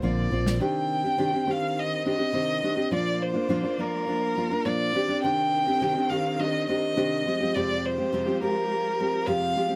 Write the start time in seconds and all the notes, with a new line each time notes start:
0.02 A#1 A#2 D3 F3 A#3 C4 F4 D5
0.31 A#1 F3 A#3 C4 F4
0.46 snare
0.60 C3 D#3 C4 D4 G4 G5
1.04 C4 D4 G4
1.18 C3 D#3 C4 D4 G4
1.33 C4 D4 G4
1.46 D#3 C4 D4 G4
1.50 F5
1.79 D#5
2.05 D#3 C4 D4 G4 D#5
2.18 C4 D4 G4
2.33 C3 D#3 C4 D4 G4
2.62 D#3 C4 D4 G4
2.77 C4 D4 G4
2.91 A#2 F3 A#3 D4 F4 D5
3.22 C5
3.34 A#3 D4 F4
3.49 A#2 F3 A#3 D4 F4
3.63 A#3 D4 F4
3.78 F3 A#3 D4 F4 A#4
4.07 F3 A#3 D4 F4
4.36 F3 A#3 D4 F4
4.50 A#3 D4 F4
4.65 A#2 F3 A#3 D4 F4 D5
4.94 D#3 C4 D4 G4
5.08 C4 D4 G4
5.23 C3 D#3 C4 D4 G4 G5
5.67 C4 D4 G4
5.81 C3 D#3 C4 D4 G4
5.95 C4 D4 G4
6.10 D#3 C4 D4 G4 F5
6.39 D#3 C4 D4 G4 D#5
6.67 D#3 C4 D4 G4 D#5
6.96 C3 D#3 C4 D4 G4
7.24 F3 G#3 C4 F4 G4
7.40 F3 G#3 C4 G4
7.54 F2 C3 F3 G#3 C4 G4 D5
7.85 C5
7.98 F3 G#3 C4 G4
8.12 F2 C3 F3 G#3 C4 G4
8.27 F3 G#3 C4 G4
8.41 F3 G#3 C4 G4 A#4
8.99 F3 G#3 C4 G4
9.27 F2 C3 F3 G#3 C4 G4 F5
9.56 F3 G#3 C4 G4
9.69 F3 G#3 C4 G4